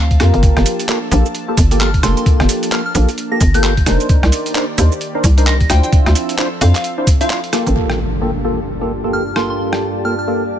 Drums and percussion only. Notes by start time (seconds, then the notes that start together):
0.11 kick, closed hi-hat
0.20 cross-stick, open hi-hat
0.34 closed hi-hat
0.43 kick, closed hi-hat, cabasa
0.57 cross-stick, closed hi-hat
0.66 open hi-hat, cabasa
0.80 closed hi-hat, cabasa
0.89 clap, cabasa
1.12 open hi-hat, cabasa
1.25 cabasa
1.35 closed hi-hat, cabasa
1.57 kick, open hi-hat, cabasa
1.71 closed hi-hat, cabasa
1.80 clap, cabasa
1.94 kick, closed hi-hat
2.03 cross-stick, open hi-hat, cabasa
2.17 closed hi-hat, cabasa
2.26 kick, closed hi-hat, cabasa
2.40 cross-stick, closed hi-hat
2.49 open hi-hat, cabasa
2.63 closed hi-hat, cabasa
2.72 clap, cabasa
2.95 open hi-hat, cabasa
3.09 open hi-hat, cabasa
3.18 closed hi-hat, cabasa
3.41 kick, open hi-hat, cabasa
3.54 closed hi-hat, cabasa
3.63 clap, cabasa
3.77 kick, closed hi-hat
3.86 cross-stick, open hi-hat, cabasa
4.00 closed hi-hat, cabasa
4.09 kick, closed hi-hat, cabasa
4.23 cross-stick, closed hi-hat
4.32 open hi-hat, cabasa
4.46 closed hi-hat, cabasa
4.55 clap, cabasa
4.78 open hi-hat, cabasa
4.92 cabasa
5.01 closed hi-hat, cabasa
5.24 kick, open hi-hat, cabasa
5.38 closed hi-hat, cabasa
5.47 clap, cabasa
5.61 kick, closed hi-hat
5.70 cross-stick, open hi-hat, cabasa
5.83 closed hi-hat, cabasa
5.93 kick, closed hi-hat, cabasa
6.06 cross-stick, closed hi-hat
6.15 open hi-hat, cabasa
6.29 closed hi-hat, cabasa
6.38 clap, cabasa
6.61 open hi-hat, cabasa
6.75 clap, open hi-hat, cabasa
6.84 closed hi-hat, cabasa
7.07 kick, open hi-hat, cabasa
7.21 closed hi-hat, cabasa
7.30 clap, cabasa
7.44 closed hi-hat
7.53 cross-stick, open hi-hat, cabasa
7.67 closed hi-hat, cabasa
7.90 cross-stick
9.36 cross-stick
9.73 cross-stick